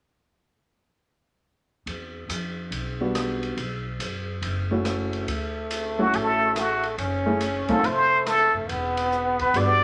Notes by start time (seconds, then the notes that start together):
1.86 E2, ride
2.29 F2, hi-hat pedal, ride
2.71 B1, ride
3.00 G3 B3 D4 F#4
3.15 cross-stick, hi-hat pedal, ride
3.43 ride
3.57 B1, ride
3.99 F#2, hi-hat pedal, ride
4.42 F#1, ride
4.71 A3 C#4 E4 F#4
4.85 cross-stick, hi-hat pedal, ride
5.13 ride
5.27 D2 A3, ride
5.71 hi-hat pedal, ride
5.99 A3 C#4 E4 F#4
6.13 A1 A4, ride
6.56 F#4, cross-stick, hi-hat pedal, ride
6.83 ride
6.98 F#1 C#4, ride
7.26 A3 C#4 E4 G#4
7.41 hi-hat pedal, ride
7.68 A3 C4 D#4 F4 A4, muted upright bass stroke, kick, ride
7.83 F1 A3 C5, ride
8.26 A4, cross-stick, hi-hat pedal, ride
8.54 F1
8.69 E1 B3, ride
8.97 ride
9.12 hi-hat pedal
9.39 B4, kick, ride
9.54 G1 G3 B3 D4 F#4 D5, ride